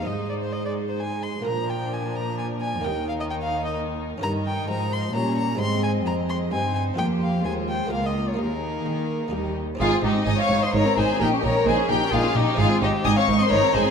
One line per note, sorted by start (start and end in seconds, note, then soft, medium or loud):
0.00 1.40 C4 soft
0.00 1.42 D#4 soft
0.00 1.40 D#4 soft
0.05 1.42 G#2 soft
0.05 1.46 G#2 soft
0.05 1.46 G#3 soft
0.05 1.41 G#4 soft
0.05 1.43 C5 soft
0.05 0.29 D#5 medium
0.29 0.34 D5 medium
0.43 0.54 C5 medium
0.53 0.65 D#5 medium
0.65 0.73 D5 medium
0.89 1.02 C5 medium
1.00 1.24 G#5 medium
1.22 1.46 C6 medium
1.42 2.82 A#2 soft
1.42 2.79 A#3 soft
1.42 2.80 D4 soft
1.42 2.80 A#4 soft
1.42 4.18 A#4 soft
1.46 2.81 A#2 soft
1.46 2.82 F3 medium
1.46 2.85 D4 soft
1.46 1.71 A#5 medium
1.69 1.94 G5 medium
1.93 2.17 G#5 medium
2.16 2.38 A#5 medium
2.38 2.46 G#5 medium
2.61 2.85 G#5 medium
2.81 4.23 D#2 medium
2.81 4.17 A#3 soft
2.81 4.18 D#4 soft
2.81 4.21 D#4 medium
2.81 4.18 A#4 soft
2.81 3.07 G5 medium
2.85 4.19 D#2 soft
2.85 4.20 D#3 medium
3.09 3.13 F5 medium
3.20 3.25 D#5 medium
3.30 3.35 G5 medium
3.42 3.64 F5 medium
3.65 3.76 D#5 medium
4.18 4.65 C#4 soft
4.18 5.55 D#4 soft
4.18 5.56 A#4 soft
4.22 4.65 G2 soft
4.22 4.66 G2 medium
4.22 4.66 D#3 medium
4.22 5.11 D#4 medium
4.22 5.11 A#4 medium
4.22 4.31 A#5 medium
4.46 4.68 G5 medium
4.68 5.14 G#2 medium
4.68 5.11 G#2 soft
4.68 5.15 F3 medium
4.68 4.94 A#5 medium
4.92 5.14 C6 medium
5.14 5.60 A#2 medium
5.14 5.57 A#2 soft
5.14 5.60 G3 medium
5.14 5.61 C#4 medium
5.14 5.61 C#5 medium
5.14 5.37 A#5 medium
5.38 5.60 A#5 medium
5.55 6.02 G#3 soft
5.55 6.03 C4 soft
5.55 6.04 D#4 soft
5.59 6.06 G#2 medium
5.59 6.03 G#2 soft
5.59 6.04 G#3 medium
5.59 6.51 C4 medium
5.59 6.94 G#4 soft
5.59 6.05 D#5 soft
5.59 5.83 C6 medium
5.83 5.91 G#5 medium
6.05 6.52 F2 medium
6.05 6.48 F2 soft
6.05 6.51 G#3 medium
6.05 6.51 D#5 soft
6.05 6.14 A#5 medium
6.29 6.37 C6 medium
6.51 6.94 G2 soft
6.51 6.98 G2 medium
6.51 6.98 C4 medium
6.51 6.98 D#4 soft
6.51 6.98 C5 medium
6.51 6.74 G#5 medium
6.75 6.83 G#5 medium
6.94 7.43 F2 medium
6.94 7.41 C4 soft
6.94 7.87 F4 soft
6.94 7.43 G4 medium
6.94 7.88 G#4 soft
6.94 7.06 G5 medium
6.98 7.41 F2 soft
6.98 7.44 A#3 medium
6.98 7.44 C5 soft
7.22 7.45 F5 medium
7.44 7.91 D#2 medium
7.44 7.87 D#2 soft
7.44 7.91 G#3 soft
7.44 7.89 F4 soft
7.44 7.91 C5 soft
7.44 7.53 G#5 medium
7.69 7.91 G5 medium
7.87 8.37 C#2 medium
7.87 8.33 A#3 soft
7.87 8.38 A#3 soft
7.87 8.35 F4 soft
7.87 8.37 F4 soft
7.87 8.36 A#4 soft
7.91 8.34 C#2 soft
7.91 8.39 A#4 soft
7.91 8.07 F5 medium
8.06 8.30 D#5 medium
8.28 8.38 C#5 medium
8.34 9.27 A#3 soft
8.34 9.29 D#4 soft
8.34 9.32 D#4 soft
8.34 9.29 G#4 soft
8.38 8.85 D#2 medium
8.38 8.82 D#2 soft
8.38 9.31 A#3 soft
8.38 9.33 G#4 soft
8.38 9.54 A#4 medium
8.85 9.31 D#3 soft
8.85 9.29 D#3 soft
9.28 9.76 A#3 soft
9.28 9.76 D#4 soft
9.28 9.78 G4 soft
9.33 9.79 D#2 medium
9.33 9.76 D#2 soft
9.33 9.60 G3 soft
9.33 9.59 D#4 soft
9.33 9.60 G4 soft
9.75 11.14 C4 medium
9.75 11.14 D#4 medium
9.75 11.15 G#4 medium
9.79 9.87 G#1 medium
9.79 10.01 G#2 medium
9.79 9.88 G#2 medium
9.79 9.91 D#4 medium
9.79 10.02 F4 medium
9.79 10.02 G#4 medium
9.79 9.89 F5 loud
9.92 10.04 C4 medium
10.02 10.11 G#1 medium
10.02 10.24 G#2 medium
10.02 10.12 G#2 medium
10.02 10.16 D#4 medium
10.02 10.27 D#4 medium
10.02 10.26 G4 medium
10.02 10.27 D#5 medium
10.16 10.27 C4 medium
10.27 10.35 G#1 medium
10.27 10.48 G#2 medium
10.27 10.35 G#2 medium
10.27 10.38 D#4 medium
10.27 10.39 D#5 medium
10.27 10.31 G#5 medium
10.27 10.39 D#6 loud
10.38 10.50 C4 medium
10.38 10.62 C#5 medium
10.38 10.64 F5 medium
10.38 10.62 C#6 medium
10.50 10.58 G#1 medium
10.50 10.58 G#2 medium
10.50 10.71 G#2 medium
10.50 10.63 D#4 medium
10.62 10.74 C4 medium
10.62 10.74 C5 medium
10.62 10.74 D#5 medium
10.62 10.74 C6 medium
10.74 10.82 G#1 medium
10.74 10.82 G#2 medium
10.74 10.95 G#2 medium
10.74 10.85 D#4 medium
10.74 10.97 A#4 medium
10.74 10.97 C#5 medium
10.74 10.97 A#5 loud
10.86 10.97 C4 medium
10.97 11.05 G#1 medium
10.97 11.05 G#2 medium
10.97 11.18 G#2 medium
10.97 11.09 D#4 medium
10.97 11.20 G#4 medium
10.97 11.19 C5 medium
10.97 11.20 G#5 medium
11.09 11.20 C4 medium
11.16 11.27 A#1 medium
11.16 12.53 C#4 medium
11.16 12.53 D#4 medium
11.16 12.54 G4 medium
11.20 11.41 A#2 medium
11.20 11.28 A#2 medium
11.20 11.31 D#4 medium
11.20 11.44 G4 medium
11.20 11.28 A#4 medium
11.20 11.29 G5 medium
11.32 11.43 C#4 medium
11.43 11.51 A#1 medium
11.43 11.51 A#2 medium
11.43 11.64 A#2 medium
11.43 11.55 D#4 medium
11.43 11.66 A#4 medium
11.43 11.67 C#5 medium
11.43 11.67 A#5 medium
11.55 11.66 C#4 medium
11.65 11.73 A#1 medium
11.65 11.87 A#2 medium
11.65 11.75 A#2 medium
11.65 11.77 D#4 medium
11.65 11.90 G#4 medium
11.65 11.88 C5 medium
11.65 11.76 G#5 loud
11.78 11.89 C#4 medium
11.88 11.97 A#1 medium
11.88 12.10 A#2 medium
11.88 11.97 A#2 medium
11.88 12.01 D#4 medium
11.88 12.13 G4 medium
11.88 12.13 A#4 medium
11.88 12.12 G5 loud
12.01 12.13 C#4 medium
12.11 12.20 A#1 medium
12.11 12.33 A#2 medium
12.11 12.21 A#2 medium
12.11 12.24 D#4 medium
12.11 12.36 F4 medium
12.11 12.37 G#4 loud
12.11 12.37 F5 loud
12.24 12.36 C#4 medium
12.35 12.43 A#1 medium
12.35 12.44 A#2 medium
12.35 12.57 A#2 medium
12.35 12.59 D#4 medium
12.35 12.48 D#4 medium
12.35 12.60 G4 medium
12.35 12.60 D#5 medium
12.47 12.59 C#4 medium
12.55 12.66 G#1 medium
12.55 13.91 C4 medium
12.55 13.91 D#4 medium
12.55 13.91 G#4 medium
12.55 12.81 G#4 loud
12.55 12.66 F5 loud
12.59 12.67 G#2 medium
12.59 12.80 G#2 medium
12.59 12.70 D#4 medium
12.59 12.82 F4 loud
12.71 12.82 C4 medium
12.81 12.89 G#1 medium
12.81 12.90 G#2 medium
12.81 13.03 G#2 medium
12.81 12.90 D#4 medium
12.81 12.94 D#4 medium
12.81 13.06 G4 medium
12.81 12.91 D#5 medium
12.93 13.05 C4 medium
13.04 13.13 G#1 medium
13.04 13.26 G#2 medium
13.04 13.13 G#2 medium
13.04 13.16 D#4 medium
13.04 13.16 D#5 medium
13.04 13.18 G#5 medium
13.04 13.11 D#6 loud
13.16 13.29 C4 medium
13.16 13.25 C#5 medium
13.16 13.38 F5 medium
13.16 13.41 C#6 loud
13.28 13.36 G#1 medium
13.28 13.36 G#2 medium
13.28 13.49 G#2 medium
13.28 13.40 D#4 medium
13.38 13.51 C4 medium
13.38 13.51 C5 medium
13.38 13.43 D#5 medium
13.43 13.53 C6 loud
13.50 13.59 G#1 medium
13.50 13.59 G#2 medium
13.50 13.73 G#2 medium
13.50 13.62 D#4 medium
13.50 13.74 A#4 loud
13.50 13.75 C#5 loud
13.50 13.75 A#5 loud
13.63 13.75 C4 medium
13.73 13.82 G#1 medium
13.73 13.83 G#2 medium
13.73 13.91 G#2 medium
13.73 13.86 D#4 medium
13.73 13.91 G#4 loud
13.73 13.91 C5 medium
13.73 13.91 G#5 loud
13.86 13.91 C4 medium